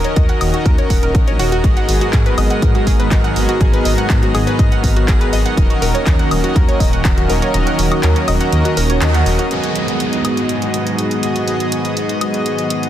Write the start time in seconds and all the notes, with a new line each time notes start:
Already playing: D#3 C#4 F#4 A#4 D#5 A#5
0.04 C#5, closed hi-hat
0.16 D#2 D#5, kick, closed hi-hat
0.29 F#5, closed hi-hat
0.41 D#1 D#3 C#4 F#4 A#4 D#5, open hi-hat, high woodblock
0.54 F#4, closed hi-hat
0.66 D#2 A#4, kick, closed hi-hat
0.78 C#5, closed hi-hat
0.90 D#1 F#5, kick, open hi-hat
1.03 A#4, closed hi-hat
1.15 A#1, kick, closed hi-hat
1.27 C#5, closed hi-hat
1.39 D#1 C#4 F#4 A#4 D#5, open hi-hat
1.52 F#4, closed hi-hat
1.64 G#1 G#2 D#3 F#3 G#3 B3 F#4 G#4 D#5, kick, closed hi-hat
1.77 F#5, closed hi-hat
1.89 G#1, open hi-hat
2.01 F#4, closed hi-hat
2.13 G#2 G#4, kick, clap, closed hi-hat
2.26 B4, closed hi-hat
2.38 G#1 G#2 B3 F#4 G#4 D#5, open hi-hat, high woodblock
2.50 F#5, closed hi-hat
2.62 G#2, kick, closed hi-hat
2.75 F#4, closed hi-hat
2.87 G#1 G#4, kick, open hi-hat
3.00 B4, closed hi-hat
3.11 G#1 D#5, kick, clap, closed hi-hat
3.24 F#5, closed hi-hat
3.36 G#1 G#2 B3 F#4 G#4 D#5, open hi-hat
3.49 F#4, closed hi-hat
3.61 G#1 G#2 B3 F#4 G#4 D#5, kick, closed hi-hat
3.73 B4, closed hi-hat
3.85 G#1 D#5, open hi-hat
3.98 F#5, closed hi-hat
4.10 G#2, kick, clap, closed hi-hat
4.22 F#4, closed hi-hat
4.34 G#1 G#2 B3 F#4 G#4 D#5, open hi-hat, high woodblock
4.47 B4, closed hi-hat
4.59 G#2 D#5, kick, closed hi-hat
4.72 F#5, closed hi-hat
4.84 G#1, kick, open hi-hat
4.96 F#4, closed hi-hat
5.08 G#1 G#4, kick, clap, closed hi-hat
5.21 B4, closed hi-hat
5.33 G#1 B3 F#4 G#4 D#5, open hi-hat
5.45 F#5, closed hi-hat
5.57 D#1 D#3 F#3 A#3 C#4 F#4 A#4 D#5, kick, closed hi-hat
5.70 F#4, closed hi-hat
5.82 D#1 A#4, open hi-hat
5.95 C#5, closed hi-hat
6.07 D#2 D#5, kick, clap, closed hi-hat
6.19 F#5, closed hi-hat
6.31 D#1 D#3 C#4 F#4 A#4 D#5, open hi-hat, high woodblock
6.44 F#4, closed hi-hat
6.56 D#2 A#4, kick, closed hi-hat
6.68 C#5, closed hi-hat
6.80 D#1 D#5, kick, open hi-hat
6.93 F#5, closed hi-hat
7.05 D#1, kick, clap, closed hi-hat
7.18 F#4, closed hi-hat
7.29 D#1 D#3 C#4 F#4 A#4 D#5, open hi-hat
7.42 C#5, closed hi-hat
7.54 D#1 D#3 C#4 F#4 A#4 D#5, closed hi-hat
7.67 F#5, closed hi-hat
7.79 D#1, open hi-hat
7.91 F#4, closed hi-hat, high woodblock
8.03 D#2 A#4, clap, closed hi-hat
8.16 C#5, closed hi-hat
8.28 D#1 D#3 C#4 F#4 A#4 D#5, open hi-hat, high woodblock
8.41 F#5, closed hi-hat
8.53 D#2, closed hi-hat
8.65 F#4, closed hi-hat
8.77 D#1 A#4, open hi-hat
8.90 C#5, closed hi-hat
9.02 D#2 D#5, clap, closed hi-hat
9.14 F#5, closed hi-hat
9.26 D#1 C#4 F#4 A#4 D#5, open hi-hat
9.39 F#4, closed hi-hat
9.51 G#2 D#3 F#3 G#3 B3 F#4 G#4 D#5 D#6, closed hi-hat, downlifter
9.63 closed hi-hat
9.76 closed hi-hat
9.88 closed hi-hat
10.00 closed hi-hat
10.13 closed hi-hat
10.25 G#2 B3 F#4 G#4 D#5, closed hi-hat, high woodblock
10.37 closed hi-hat
10.49 closed hi-hat
10.62 closed hi-hat
10.74 closed hi-hat
10.87 closed hi-hat
10.98 closed hi-hat
11.11 closed hi-hat
11.23 G#2 B3 F#4 G#4 D#5, closed hi-hat
11.36 closed hi-hat
11.48 G#2 B3 F#4 G#4 D#5, closed hi-hat
11.60 closed hi-hat
11.72 closed hi-hat
11.85 closed hi-hat
11.97 closed hi-hat
12.09 closed hi-hat
12.21 G#2 B3 F#4 G#4 D#5, closed hi-hat, high woodblock
12.34 closed hi-hat
12.46 closed hi-hat
12.58 closed hi-hat
12.70 closed hi-hat
12.83 closed hi-hat